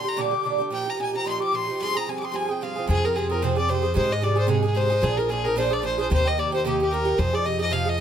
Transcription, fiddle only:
0.08 0.22 A#5 medium
0.21 0.61 D6 medium
0.74 0.91 G5 loud
0.90 1.00 A#5 medium
1.02 1.15 G#5 medium
1.17 1.27 A#5 medium
1.29 1.42 C6 medium
1.43 1.56 D6 medium
1.55 1.81 C6 medium
1.82 1.98 C6 loud
1.97 2.11 A#5 medium
2.09 2.19 G#5 medium
2.19 2.26 D6 medium
2.25 2.37 C6 medium
2.36 2.52 G#5 medium
2.51 2.64 G5 medium
2.63 2.88 F5 medium
2.89 3.06 G#4 loud
3.05 3.17 A#4 medium
3.16 3.30 G#4 medium
3.31 3.44 A#4 medium
3.43 3.56 C5 medium
3.57 3.71 D5 medium
3.70 3.96 C5 medium
3.97 4.14 C5 medium
4.12 4.25 D#5 medium
4.24 4.38 D5 medium
4.39 4.50 C5 medium
4.51 4.64 G#4 medium
4.65 4.78 G#4 medium
4.77 5.05 C5 loud
5.03 5.18 G#4 loud
5.17 5.31 A#4 medium
5.30 5.46 G#4 medium
5.45 5.57 A#4 loud
5.58 5.75 C5 medium
5.73 5.85 D5 loud
5.85 5.99 C5 medium
6.01 6.11 C5 medium
6.13 6.29 C5 loud
6.28 6.41 D#5 medium
6.39 6.53 D5 medium
6.54 6.65 C5 loud
6.67 6.80 G4 medium
6.82 6.94 G4 medium
6.92 7.20 A#4 medium
7.19 7.36 C5 loud
7.35 7.47 D5 medium
7.46 7.60 D#5 medium
7.61 7.74 D#5 loud
7.73 7.90 F5 medium
7.89 8.00 D#5 loud

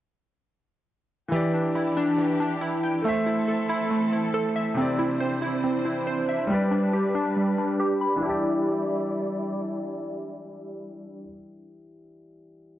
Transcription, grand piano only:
1.28 2.99 E3 medium
1.28 3.01 E4 medium
1.33 3.02 G4 medium
1.33 3.03 D5 medium
3.02 4.72 A3 medium
3.02 4.74 A4 medium
3.06 4.75 C5 medium
3.06 4.76 E5 medium
4.74 6.45 C3 medium
4.74 6.46 C4 medium
4.79 6.47 E4 medium
4.79 6.49 D5 medium
6.47 8.18 G3 medium
6.47 8.19 G4 medium
6.52 8.20 B4 medium
6.52 8.21 D5 medium
8.16 11.20 E3 medium
8.20 11.25 E4 medium
8.25 11.29 G4 medium
8.29 11.34 D5 medium

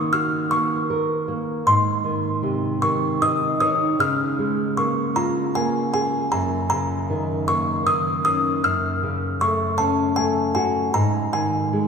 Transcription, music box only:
0.00 0.15 C#6 medium
0.13 0.53 F6 medium
0.51 1.69 C#6 medium
1.67 3.17 C6 medium
2.82 3.18 C#6 medium
3.22 3.39 D#6 medium
3.60 3.97 D#6 medium
4.00 4.80 F6 medium
4.77 5.18 C#6 medium
5.16 5.52 A#5 medium
5.55 5.92 G#5 medium
5.94 6.29 G#5 medium
6.32 6.69 A#5 medium
6.70 7.50 A#5 medium
7.48 7.88 C#6 medium
7.87 8.24 D#6 medium
8.25 8.65 D#6 medium
8.64 9.37 F6 medium
9.41 9.80 C#6 medium
9.78 9.95 A5 medium
10.16 10.52 G#5 medium
10.55 10.72 G#5 medium
10.94 11.34 A#5 medium
11.33 11.88 G#5 medium

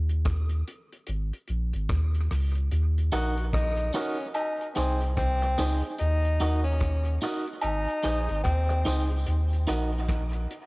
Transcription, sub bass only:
0.00 0.63 D#2 medium
1.08 1.32 G#1 loud
1.49 1.73 A#1 medium
1.74 1.89 G#1 medium
1.90 2.29 D#2 medium
2.31 2.70 C#2 medium
2.72 3.11 D#2 loud
3.13 3.91 A#1 medium
4.77 5.16 C2 medium
5.17 5.56 C2 medium
5.59 5.82 C#2 medium
6.01 6.39 D#2 loud
6.41 7.19 D#2 medium
7.64 7.87 G#1 loud
8.04 8.28 A#1 medium
8.30 8.45 G#1 medium
8.45 8.84 D#2 loud
8.87 9.25 C#2 medium
9.28 9.66 D#2 loud
9.69 10.47 A#1 medium

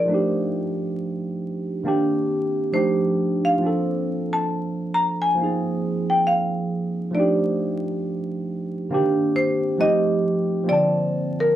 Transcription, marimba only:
0.00 2.70 D5 medium
2.74 3.47 C5 medium
3.45 4.35 F5 medium
4.33 4.95 A5 medium
4.94 5.19 A#5 medium
5.22 6.12 G#5 medium
6.10 6.27 G5 medium
6.27 7.17 F5 medium
7.15 8.43 D5 medium
9.36 9.81 C5 medium
9.81 10.64 D#5 medium
10.69 11.42 D5 loud
11.40 11.56 A#4 medium

